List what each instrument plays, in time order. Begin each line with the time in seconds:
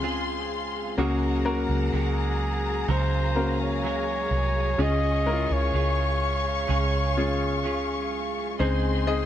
Already playing: fingered electric bass C#2, grand piano C4 C#4 F4 G#4, string section G#4 F5 C6
0.02 clean electric guitar G#3 C4 F4 G#4
0.98 fingered electric bass C#2, clean electric guitar C#3 F#3 G#3 F#4 A#4, grand piano C#3 A#3 C#4 F#4 G#4, string section G#4 F#5 A#5
1.45 grand piano A#3 C#4 F#4 A#4
1.69 fingered electric bass C#2
1.93 fingered electric bass C#2, clean electric guitar F#3 G#3 F#4 A#4, flugelhorn G#4
2.88 fingered electric bass C#2, clean electric guitar C#3 F#3 G#3 F#4 A#4, flugelhorn C5, string section F5
3.35 grand piano A#3 C#4 F#4 A#4
3.62 flugelhorn C#5
3.83 clean electric guitar F#3 G#3 F#4 A#4
4.31 fingered electric bass C2
4.78 fingered electric bass C#2, grand piano C#3 G#3 C#4 F4 G#4, clean electric guitar C#3 G#3 C#4 F4 G#4, flugelhorn D#5, string section F5 C#6
5.26 grand piano G#3 C#4 E4 A#4
5.33 grand piano F4
5.50 fingered electric bass C#2, flugelhorn C#5
5.73 fingered electric bass C#2, clean electric guitar G#3 C#4 F4 G#4
6.68 fingered electric bass C#2, clean electric guitar C#3 G#3 C#4 F4 G#4
7.17 grand piano G#3 C#4 F4 G#4
7.63 clean electric guitar G#3 C#4 F4 G#4
8.59 fingered electric bass C#2, clean electric guitar C#3 G#3 C4 D#4 G#4, grand piano C#3 G#3 C4 D#4 G#4 C5, string section G#4 D#5 C6
9.07 grand piano G#3 C4 D#4 G#4 D#5